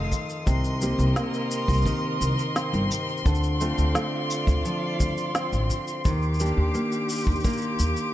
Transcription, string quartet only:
0.00 0.44 A4 medium
0.00 0.44 F5 medium
0.00 0.44 D#6 medium
0.47 3.23 A#4 medium
0.47 3.23 D#5 medium
0.47 6.01 C6 medium
3.26 6.02 F4 medium
3.26 6.02 D5 medium
6.05 8.14 G4 medium
6.05 8.14 D6 medium

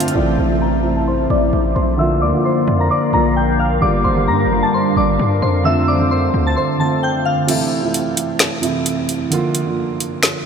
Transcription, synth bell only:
0.00 0.11 F5 medium
0.00 0.12 F6 medium
0.16 0.34 D5 medium
0.16 0.34 D6 loud
0.39 0.57 C5 medium
0.39 0.57 C6 medium
0.61 0.94 A#5 medium
0.61 0.95 A#6 medium
0.96 1.05 A5 medium
0.96 1.06 A6 medium
1.08 1.26 C5 medium
1.08 1.26 C6 medium
1.30 1.74 D5 medium
1.30 1.73 D6 medium
1.75 1.94 C5 medium
1.75 1.94 C6 medium
1.99 2.18 E5 medium
1.99 2.17 E6 loud
2.22 2.41 D5 medium
2.22 2.40 D6 medium
2.45 2.78 C5 medium
2.45 2.78 C6 medium
2.80 2.89 A#5 medium
2.80 2.89 A#6 medium
2.91 3.09 D5 medium
2.91 3.09 D6 medium
3.14 3.32 A#5 medium
3.14 3.32 A#6 medium
3.36 3.55 G5 medium
3.36 3.55 G6 medium
3.59 3.78 F5 medium
3.59 3.78 F6 medium
3.82 4.01 D5 medium
3.82 4.00 D6 loud
4.04 4.23 C5 medium
4.04 4.23 C6 medium
4.28 4.61 A#5 medium
4.28 4.61 A#6 medium
4.63 4.71 A5 medium
4.63 4.72 A6 medium
4.74 4.93 C5 medium
4.74 4.92 C6 medium
4.97 5.40 D5 medium
4.97 5.40 D6 medium
5.42 5.61 C5 medium
5.42 5.61 C6 medium
5.65 5.84 E5 medium
5.65 5.84 E6 loud
5.88 6.07 D5 medium
5.88 6.06 D6 medium
6.11 6.44 C5 medium
6.11 6.44 C6 medium
6.47 6.55 A5 medium
6.47 6.55 A6 medium
6.57 6.76 C5 medium
6.57 6.75 C6 medium
6.80 6.98 A5 medium
6.80 6.99 A6 medium
7.03 7.21 G5 medium
7.03 7.22 G6 medium
7.25 7.44 F5 medium
7.25 7.44 F6 medium

